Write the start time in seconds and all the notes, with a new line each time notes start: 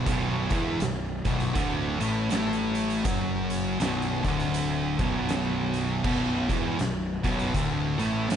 0.06 B0 B1 B2, kick, closed hi-hat
0.50 E1 E2 E3, kick, closed hi-hat
0.80 B0 B1, snare, closed hi-hat
1.25 B0 B1 B2, kick, closed hi-hat
1.40 snare, closed hi-hat
1.55 D1 D2 D3, kick, closed hi-hat
2.00 A1 A2 A3, closed hi-hat
2.30 A1 A2 A3, snare, closed hi-hat
2.53 closed hi-hat
2.75 closed hi-hat
2.90 closed hi-hat
3.04 F#1 F#2 F#3, kick, closed hi-hat
3.50 closed hi-hat
3.79 B0 B1 B2, snare, closed hi-hat
4.02 closed hi-hat
4.23 D1 D2 D3, kick, closed hi-hat
4.40 snare, closed hi-hat
4.54 closed hi-hat
4.98 B0 B1 B2, kick, closed hi-hat
5.29 snare, closed hi-hat
5.74 closed hi-hat
6.04 B0 B1 B2, kick, crash
6.49 E1 E2 E3, kick, closed hi-hat
6.79 B0 B1, snare, closed hi-hat
7.23 B0 B1 B2, kick, closed hi-hat
7.39 snare, closed hi-hat
7.54 D1 D2 D3, kick, closed hi-hat
7.99 A1 A2 A3, closed hi-hat
8.28 A1 A2 A3, snare, closed hi-hat